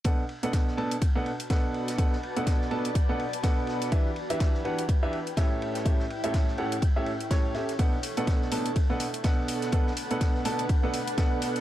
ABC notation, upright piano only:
X:1
M:4/4
L:1/16
Q:"Swing 16ths" 1/4=124
K:Bm
V:1 name="Upright piano"
[B,,DABf] z2 [B,,DABf]3 [B,,DABa] z2 [B,,DABf] z2 [B,,DABf]4 | [B,,DABf] z2 [B,,DABf]3 [B,,DABa] z2 [B,,DABf] z2 [B,,DABf]4 | [E,DGBe] z2 [E,DGBe]3 [E,DGBf] z2 [E,DGBe] z2 [A,,CGAe]4 | [A,,CGAe] z2 [A,,CGAe]3 [A,,CGAf] z2 [A,,CGAe] z2 [A,,CGAc]2 [CGAe] z |
[B,,DABf] z2 [B,,DABf]3 [B,,DABa] z2 [B,,DABf] z2 [B,,DABf]4 | [B,,DABf] z2 [B,,DABf]3 [B,,DABa] z2 [B,,DABf] z2 [B,,DABf]4 |]